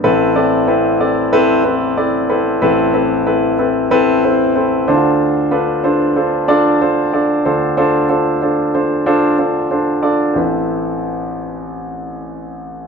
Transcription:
<<
  \new Staff \with { instrumentName = "Grand piano" } { \time 4/4 \key a \minor \tempo 4 = 93 <c' e' a' b'>8 <c' e' a' d''>8 <c' e' a' b'>8 <c' e' a' d''>8 <c' e' a' b'>8 <c' e' a' b'>8 <c' e' a' d''>8 <c' e' a' b'>8 | <c' e' a' b'>8 <c' e' a' b'>8 <c' e' a' b'>8 <c' e' a' b'>8 <c' e' a' b'>8 <c' e' a' c''>8 <c' e' a' c''>8 <d' e' f' a' c''>8~ | <d' e' f' a' c''>8 <d' f' a' b'>8 <d' f' a' c''>8 <d' f' a' c''>8 <d' f' a' d''>8 <d' f' a' c''>8 <d' f' a' d''>8 <d' f' a' c''>8 | <d' f' a' c''>8 <d' f' a' c''>8 <d' f' a' c''>8 <d' f' a' c''>8 <d' f' a' c''>8 <d' f' a' c''>8 <d' f' a' c''>8 <d' f' a' d''>8 |
<c' e' a' b'>1 | }
  \new Staff \with { instrumentName = "Grand piano" } { \clef bass \time 4/4 \key a \minor <a,, a,>1 | <a,, a,>2.~ <a,, a,>8 <d, d>8~ | <d, d>2.~ <d, d>8 <d, d>8~ | <d, d>2.~ <d, d>8 r8 |
a,,1 | }
>>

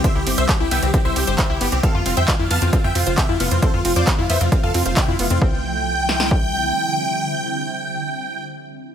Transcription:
<<
  \new Staff \with { instrumentName = "Supersaw synth" } { \time 4/4 \key c \major \tempo 4 = 134 <c'' e''>16 g'16 g'16 <c'' e''>16 r16 g'16 <e'' g''>16 g'16 g'16 <c'' e''>16 g'16 g'16 <c'' e''>16 g'16 g'16 g'16 | <a' f''>16 f'16 f'16 <e'' g''>16 f'16 f'16 <f'' a''>16 f'16 f'16 <e'' g''>16 f'16 f'16 <e'' g''>16 f'16 f'16 f'16 | <a' c''>16 f'16 f'16 <f' d''>16 f'16 f'16 <c'' e''>16 f'16 f'16 <a' f''>16 f'16 f'16 <e'' g''>16 f'16 f'16 f'16 | g''1~ |
g''1 | }
  \new Staff \with { instrumentName = "Synth pluck" } { \time 4/4 \key c \major c'16 e'16 c'16 c''16 c'16 e'16 b16 c'16 c'16 e'16 c'16 c''16 c'16 e'16 b16 c'16 | c'16 f'16 c'16 c''16 c'16 e'16 b16 c'16 c'16 f'16 c'16 c''16 c'16 e'16 b16 c'16 | c'16 f'16 c'16 c''16 c'16 e'16 b16 c'16 c'16 f'16 c'16 c''16 c'16 e'16 b16 c'16 | c'8 r2. r8 |
r1 | }
  \new Staff \with { instrumentName = "Ambient pad" } { \time 4/4 \key c \major << { e'1 | f'1 | e'1 | <d g c' e'>1~ |
<d g c' e'>1 | } \\ { <d g c'>1 | <c f a>1~ | <c f a>1 | r1 |
r1 | } >> }
  \new Staff \with { instrumentName = "Analog synth bass" } { \clef bass \time 4/4 \key c \major r16 c,16 g,,16 c,16 r16 c,16 c,16 c,16 r16 c,16 c,16 g,,16 r16 c,16 g,,16 c,16 | r16 f,16 f,,16 f,16 r16 f,16 f,16 f,16 r16 f,16 f,16 f,,16 r16 f,16 f,,16 f,16 | r16 f,16 f,,16 f,16 r16 f,16 f,16 f,16 r16 f,16 f,16 f,,16 r16 f,16 f,,16 f,16 | c,2. r4 |
r1 | }
  \new DrumStaff \with { instrumentName = "Drums" } \drummode { \time 4/4 <hh bd>8 <hho cymr>16 hh16 <hc hh bd>8 <hho cymr>16 hh16 <hh bd>8 <hho cymr>16 hh16 <hc hh bd>8 <hho cymr>16 hh16 | <hh bd>8 <hho cymr>16 hh16 <hc hh bd>8 <hho cymr>16 hh16 <hh bd>8 <hho cymr>16 hh16 <hc hh bd>8 <hho cymr>16 hh16 | <hh bd>8 <hho cymr>16 hh16 <hc hh bd>8 <hho cymr>16 hh16 <hh bd>8 <hho cymr>16 hh16 <hc hh bd>8 <hho cymr>16 hh16 | bd4 r8 sn16 sn16 bd4 r4 |
r4 r4 r4 r4 | }
>>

